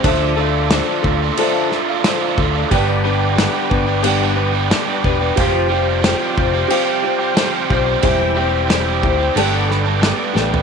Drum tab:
CC |x---x---x---x---|x---x---x---x---|x---x---x---x---|x---x---x---x---|
SD |----o-----o-o---|----o-------o---|----o-------o---|----o-----o-o-o-|
FT |----------------|----------------|----------------|---------------o|
BD |o-----o-------o-|o-----o-------o-|o-----o-------o-|o-----o---------|